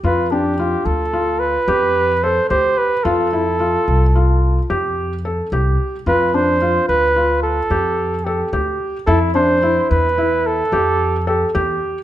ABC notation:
X:1
M:11/8
L:1/8
Q:1/4=109
K:Gmix
V:1 name="Flugelhorn"
B G2 A2 B3 c c B | A6 z4 z | B c2 B2 A3 G z2 | A c2 B2 A3 G z2 |]
V:2 name="Felt piano"
F D F2 F2 G2 A G2 | F E F2 F2 G2 A G2 | F D F2 F2 G2 A G2 | E D E2 E2 G2 A G2 |]
V:3 name="Upright bass" clef=bass
F,,3 D,,3 F,,3 D,, z | F,,3 C,,3 F,,3 C,, z | F,,3 D,,3 F,,3 D,, z | F,,3 E,,3 F,,3 E,, z |]